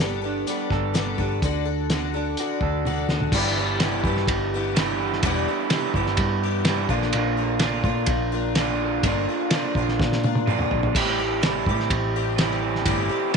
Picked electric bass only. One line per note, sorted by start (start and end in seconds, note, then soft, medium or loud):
0.00 0.43 G1 medium
0.71 1.15 G1 medium
1.18 1.40 G1 medium
1.42 2.34 D2 loud
2.61 3.05 D2 medium
3.08 3.31 D2 medium
3.32 4.05 G1 loud
4.04 4.26 G2 medium
4.27 5.19 G1 loud
5.23 5.45 E1 loud
5.94 6.16 G1 medium
6.18 6.86 G2 loud
6.89 7.11 A#1 medium
7.14 7.85 A#1 loud
7.84 8.06 A#2 medium
8.07 9.00 A#1 loud
9.03 9.26 G1 loud
9.76 9.97 A#1 medium
9.99 10.67 A#2 loud
10.72 10.95 A#1 medium
10.95 11.68 A1 medium
11.67 11.88 A2 medium
11.91 12.82 A1 loud
12.86 13.08 G1 loud